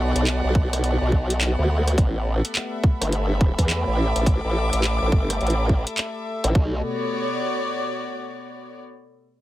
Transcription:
Already playing: B1 B3 F#4 A4 D5 F#5
0.15 B1, closed hi-hat
0.27 clap, closed hi-hat
0.44 B1
0.55 kick
0.73 cross-stick, closed hi-hat
0.84 closed hi-hat
1.01 B1
1.12 kick
1.30 closed hi-hat
1.41 clap, closed hi-hat
1.59 D2
1.88 cross-stick, closed hi-hat
1.98 A1 A3 G4 A4 B4 D5, kick, closed hi-hat
2.45 E5, closed hi-hat
2.55 clap, closed hi-hat
2.75 B5
2.84 kick
3.01 G1, cross-stick, closed hi-hat
3.12 closed hi-hat
3.41 kick
3.58 E2, kick, closed hi-hat
3.70 clap, closed hi-hat
3.77 D6
3.87 A1
4.16 A1, closed hi-hat
4.26 A4, kick, closed hi-hat
4.45 A1
4.73 A1, closed hi-hat
4.84 clap, closed hi-hat
5.02 A1
5.12 G1, kick
5.30 cross-stick, closed hi-hat
5.41 A1, closed hi-hat
5.47 closed hi-hat
5.50 closed hi-hat
5.69 kick
5.87 closed hi-hat
5.98 clap, closed hi-hat
6.44 A1, cross-stick, closed hi-hat
6.55 B1 B3, kick
6.65 F#4
6.74 C#5
6.81 D5

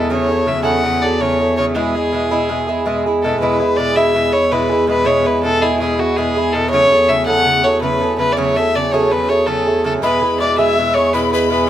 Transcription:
Already playing: E2 E4 G#4
0.10 C#3 F#3 A3 G#4 C#5
0.29 F#3 A3 G#4
0.46 C#3 F#3 A3 G#4 E5
0.63 C#3 F#3 A3 G#4 F#5
0.84 C#3 F#3 A3 G#4
1.02 F#3 A3 G#4 D5
1.20 C#3 F#3 A3 G#4 C#5
1.39 F#3 A3 G#4
1.57 C#3 F#3 A3 G#4 C#5
1.75 B2 G#3 E4 G#4
1.95 G#3 E4 G#4
2.12 B2 G#3 E4 G#4
2.31 B2 G#3 E4 G#4
2.49 B2 G#3 E4 G#4
2.67 G#3 E4 G#4
2.86 B2 G#3 E4 G#4
3.06 G#3 E4 G#4
3.22 B2 G#3 E4 G#4 A4
3.40 E2 B2 G#3 E4 G#4 B4
3.60 G#3 E4 G#4
3.77 B2 G#3 E4 G#4 D5
3.96 B2 G#3 E4 G#4 E5
4.14 B2 G#3 E4 G#4
4.31 G#3 E4 G#4 C#5
4.51 B2 G#3 E4 G#4 B4
4.70 G#3 E4 G#4
4.87 B2 G#3 E4 G#4 B4
5.04 B2 G#3 E4 G#4 C#5
5.24 G#3 E4 G#4 B4
5.43 B2 G#3 E4 G#4 A4
5.62 B2 G#3 E4 G#4
5.80 B2 G#3 E4 G#4
5.99 G#3 E4 F#4 G#4
6.17 B2 G#3 E4 G#4
6.37 G#3 E4 G#4
6.53 B2 G#3 E4 G#4 A4
6.70 C#3 F#3 A3 C#5
6.74 G#4
6.92 F#3 A3 G#4
7.08 C#3 F#3 A3 G#4 E5
7.26 C#3 F#3 A3 G#4 F#5
7.45 C#3 F#3 A3 G#4
7.63 F#3 A3 G#4 C#5
7.82 C#3 F#3 A3 G#4 B4
8.01 F#3 A3 G#4
8.18 C#3 F#3 A3 G#4 B4
8.32 D5
8.37 C#3 F#3 A3 G#4 C#5
8.57 F#3 A3 G#4 E5
8.75 C#3 F#3 A3 G#4 D5
8.92 C#3 F#3 A3 G#4 C#5
9.12 C#3 F#3 A3 G#4 B4
9.29 F#3 A3 G#4 C#5
9.46 C#3 F#3 A3 G#4 A4
9.67 F#3 A3 G#4
9.84 C#3 F#3 A3 G#4 A4
10.02 E2 B2 G#3 E4 G#4 B4 B5
10.22 G#3 E4 G#4
10.40 B2 G#3 E4 G#4 D5 D6
10.58 B2 G#3 E4 G#4 E5 E6
10.78 B2 G#3 E4 G#4
10.94 E4 G#4 C#5 C#6
10.98 G#3
11.13 B2 G#3 E4 G#4 B4 B5
11.32 G#3 E4 G#4 B4 B5
11.50 B2 G#3 E4 G#4 B4

